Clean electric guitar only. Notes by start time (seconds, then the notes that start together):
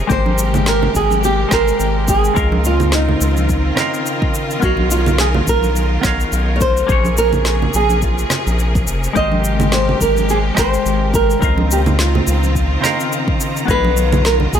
0.07 G#3 G4 A#4
0.13 C5
1.49 G#3 G4 A#4
1.54 C5
2.34 C#3 C4 A#4 D#5
2.39 F5
3.75 C#3 C4 A#4
3.79 D#5 F5
4.60 B3 A#4 C#5
4.64 D#5 F5
6.01 B3 A#4 C#5
6.05 D#5 F5
6.87 A#3 G#4 C5
6.92 C#5
9.13 G#3 G4 A#4
9.19 C5
10.55 G#3 G4 A#4
10.60 C5
11.39 C#3 C4 A#4
11.44 D#5 F5
12.81 C#3 C4 A#4 D#5
12.86 F5
13.65 B3 B4 C#5
13.70 D#5 F5